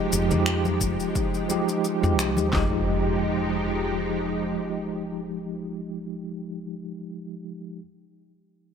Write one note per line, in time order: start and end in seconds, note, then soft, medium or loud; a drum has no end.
0.00 0.28 F3 medium
0.00 2.50 F3 medium
0.00 0.30 G#3 medium
0.00 2.50 G#3 medium
0.00 0.32 D#4 medium
0.00 2.49 D#4 medium
0.00 0.34 G4 medium
0.00 2.50 G4 medium
0.12 0.33 F1 medium
0.12 shaker medium
0.28 0.83 F2 medium
0.28 1.46 F3 medium
0.28 1.46 G#3 medium
0.28 1.47 D#4 medium
0.28 low conga medium
0.28 shaker soft
0.34 1.48 G4 medium
0.46 finger snap medium
0.46 shaker soft
0.65 high conga medium
0.65 shaker soft
0.81 0.96 F1 medium
0.81 kick medium
0.81 shaker medium
1.00 shaker soft
1.15 kick loud
1.15 shaker soft
1.34 shaker soft
1.48 1.98 F3 medium
1.48 1.98 G#3 medium
1.48 1.99 D#4 medium
1.48 1.99 G4 medium
1.48 high conga medium
1.48 shaker medium
1.68 shaker soft
1.84 shaker soft
2.01 2.19 F2 medium
2.01 2.12 F3 medium
2.01 2.12 G#3 medium
2.01 2.13 D#4 medium
2.01 2.13 G4 medium
2.01 shaker soft
2.19 2.38 C2 medium
2.19 finger snap medium
2.19 shaker medium
2.37 2.50 D#2 medium
2.37 high conga medium
2.37 shaker soft
2.49 6.73 F3 medium
2.49 6.74 G#3 medium
2.53 4.56 F1 medium
2.53 6.05 F3 medium
2.53 6.05 G#3 medium
2.53 6.05 D#4 medium
2.53 6.76 D#4 medium
2.53 6.05 G4 medium
2.53 kick medium
2.53 snare medium
2.53 clap medium
2.53 impact medium
2.57 6.77 G4 medium